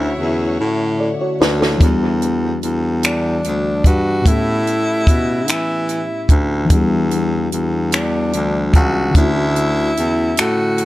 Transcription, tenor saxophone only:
Already playing: E4
3.06 D4
3.87 F#4
4.28 E4
5.51 E4
7.94 D4
8.77 F#4
9.17 E4
10.40 F#4

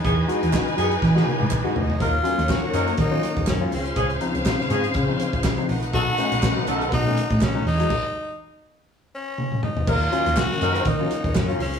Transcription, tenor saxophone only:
Already playing: B3
1.28 B3
1.78 D#4
2.01 F4
2.51 F#4
3.01 D#4
3.49 C#4
3.74 C#4
5.94 F#4
6.94 D#4
7.43 C#4
7.68 D#4
9.15 C#4
9.64 D#4
9.89 F4
10.38 F#4
10.88 D#4
11.37 C#4
11.62 C#4

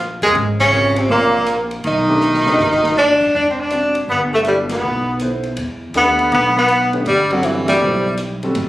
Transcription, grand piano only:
0.22 G#3 C#4 G4 A#4
0.72 C3 F4 A#4 C#5
2.09 A3 D4 G4 B4
2.47 A3 D4 G4 B4
3.71 C4 F#4 B4 D5
4.45 B2 E4 A4 B4
5.21 B3 E4 A4 C5
5.95 A3 D4 G4 A4
6.94 A3 D4 G4 B4
7.31 G3 C4 F#4 A4
7.81 B3 E4 A4 C5
8.43 G3 C4 F#4 A4

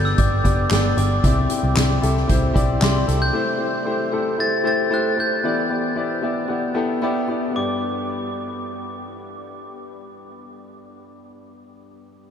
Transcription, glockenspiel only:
0.05 E6
0.18 D6
0.97 D6
2.83 C6
3.22 G6
4.40 A6
4.67 A6
4.94 F#6
5.20 G6
7.56 D6

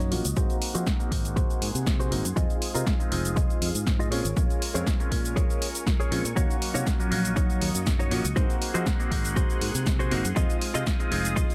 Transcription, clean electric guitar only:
0.00 D#4 F#4 C#5
0.25 muted clean electric guitar stroke
0.36 F#4 G#4 C5
0.75 F#4 G#4 C5
1.00 muted clean electric guitar stroke
1.36 F#4 G#4 C5
1.99 F#4 G#4 C5
2.25 muted clean electric guitar stroke
2.36 F4 G#4 D#5
2.74 F4 G#4 A#4
3.00 muted clean electric guitar stroke
3.36 F4 G#4 D#5
3.99 F4 G#4 D#5
4.11 G#4 A#4 C#5
4.74 G#4 A#4 C#5
5.00 muted clean electric guitar stroke
5.36 G#4 A#4 C#5
6.00 G#4 A#4 C#5
6.25 muted clean electric guitar stroke
6.36 D#4 F#4 C#5
6.74 D#4 F#4 C#5
7.00 muted clean electric guitar stroke
7.36 D#4 F#4 C#5
7.99 D#4 F#4 C#5
8.25 muted clean electric guitar stroke
8.36 F#4 G#4 C5
8.74 F#4 G#4 C5
9.00 muted clean electric guitar stroke
9.36 F#4 G#4 C5
9.99 F#4 G#4 C5
10.25 muted clean electric guitar stroke
10.36 F4 G#4 D#5
10.74 F4 G#4 D#5
10.99 muted clean electric guitar stroke
11.36 F4 G#4 D#5

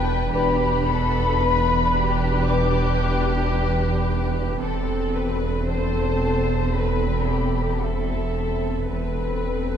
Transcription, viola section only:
Already playing: D4 B4
0.33 D4 B4
4.62 C4 A4
5.68 C4 A4
6.75 C4 A4
7.83 C4 A4
8.90 C4 A4

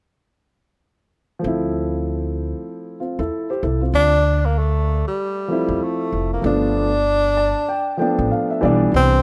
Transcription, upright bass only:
1.44 D2
3.19 E2
3.63 C2
3.94 D2
5.69 E2
6.12 F1
6.44 G1
8.19 A1
8.63 B1
8.94 C2

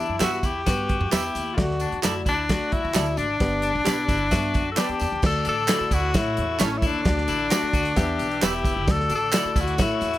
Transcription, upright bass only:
0.09 F#2
0.21 G2
0.43 E2
0.67 G2
1.01 F#2
1.13 E2
1.35 D#2
1.58 D2
1.92 E2
2.04 F#2
2.26 D2
2.73 F#2
2.84 E2
2.95 D2
3.18 G#1
3.40 G1
3.75 A1
3.86 B1
4.09 G1
4.33 G2
4.55 F#2
4.89 E2
5.01 E2
5.12 D#2
5.23 D2
5.46 A1
5.80 muted upright bass stroke
5.91 D2
6.15 A2
6.38 E2
6.60 A1
6.82 D#2
7.06 D2
7.28 A1
7.63 muted upright bass stroke
7.73 D2
7.97 E2
8.20 B1
8.43 E1
8.77 F#1
8.88 D2
9.10 A1
9.45 muted upright bass stroke
9.56 D2
9.79 A2
10.02 E2

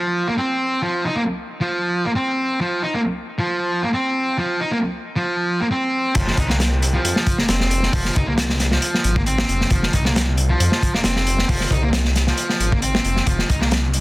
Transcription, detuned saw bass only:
6.15 F1
6.37 C2
7.05 F2
7.39 F1
7.49 F1
7.93 F1
8.16 C2
9.05 G#1
9.49 F1
9.71 F1
9.94 C2
10.60 F2
10.94 F1
11.05 F1
11.49 F1
11.71 C2
12.60 G#1
13.05 F1
13.27 F1
13.50 C2

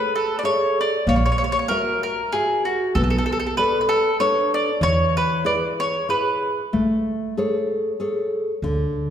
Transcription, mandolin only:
Already playing: B4
0.16 A4
0.39 D5
0.45 C#5
0.81 D5
1.09 C#5
1.16 C#5
1.26 C#5
1.32 C#5
1.38 C#5
1.44 C#5
1.52 C#5
1.59 C#5
1.68 A#4
2.03 A#4
2.32 G#4
2.65 F#4
2.95 A4
3.04 A4
3.10 A4
3.18 A4
3.26 A4
3.32 A4
3.40 A4
3.47 A4
3.57 B4
3.81 B4
3.89 A4
4.20 C#5
4.54 D5
4.83 C#5
5.17 B4
5.46 D5
5.80 C#5
6.10 B4

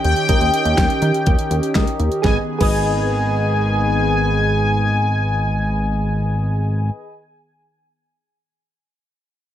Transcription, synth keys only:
Already playing: G4 A#4 D#5
0.29 G4 A#4 D#5
1.75 G4 A#4 D#5
2.22 G#4 B4
2.26 D#5
2.58 G#4 B4
2.62 D#5

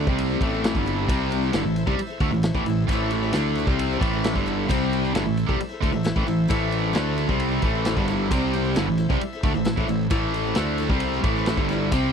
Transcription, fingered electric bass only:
0.07 C2
0.41 A1
0.75 G1
1.08 C2
1.53 G1
1.65 A1
1.87 C2
1.99 muted fingered electric bass stroke
2.20 D2
2.31 A1
2.54 A1
2.64 A1
2.88 A1
3.33 D2
3.67 C2
4.01 A1
4.36 G1
4.70 C2
5.14 G1
5.25 A1
5.49 C2
5.61 muted fingered electric bass stroke
5.83 D2
5.92 A1
6.16 A1
6.28 A1
6.50 A1
6.95 D2
7.29 C2
7.63 A1
7.96 G1
8.31 C2
8.76 G1
8.88 A1
9.10 C2
9.21 muted fingered electric bass stroke
9.43 D2
9.56 A1
9.77 A1
9.89 A1
10.11 A1
10.56 D2
10.89 C2
11.24 A1
11.57 G1
11.92 C2

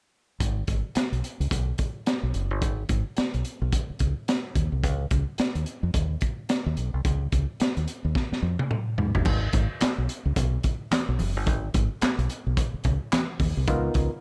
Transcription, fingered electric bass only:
0.40 G#1
0.68 G#1
0.96 muted fingered electric bass stroke
1.12 B1
1.40 C#2
1.51 B1
2.23 B1
2.34 F#1
2.51 G1
2.62 G#1
2.89 G#1
3.18 muted fingered electric bass stroke
3.34 B1
3.62 B1
3.90 muted fingered electric bass stroke
4.00 C#2
4.55 D#2
4.72 C2
4.84 C#2
5.11 C#2
5.39 muted fingered electric bass stroke
5.55 D#2
5.83 F2
5.94 D#2
6.66 D#2
6.77 B1
6.94 C2
7.05 C#2
7.32 C#2
7.61 muted fingered electric bass stroke
7.77 D#2
8.05 D#2
8.32 muted fingered electric bass stroke
8.42 F2
8.98 G#2
9.15 G1
9.26 G#1
9.53 G#1
9.82 muted fingered electric bass stroke
9.98 B1
10.25 C#2
10.36 B1
11.09 B1
11.20 F#1
11.36 G1
11.47 G#1
11.75 G#1
12.02 muted fingered electric bass stroke
12.18 B1
12.47 B1
12.74 muted fingered electric bass stroke
12.85 C#2
13.40 D#2
13.57 C2
13.68 C#2
13.95 C#2

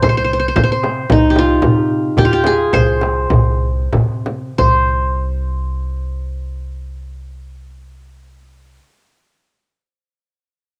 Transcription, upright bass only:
0.04 C2
0.57 C3
1.10 C2
1.63 C3
2.17 D#2
2.74 C2
3.33 C2
3.94 C3
4.59 C2

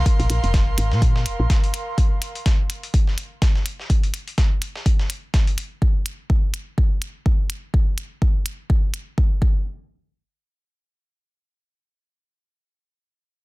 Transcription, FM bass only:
0.19 A#1
0.30 A#1
0.44 F1
0.68 A#1
0.78 G#1
0.92 A#2
1.26 F1
1.40 A#1

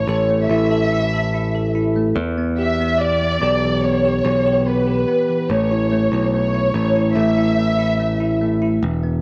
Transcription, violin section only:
Already playing: C#5
0.49 E5
2.60 E5
3.01 D5
3.84 C#5
4.68 B4
5.50 C#5
6.33 C#5
7.16 E5

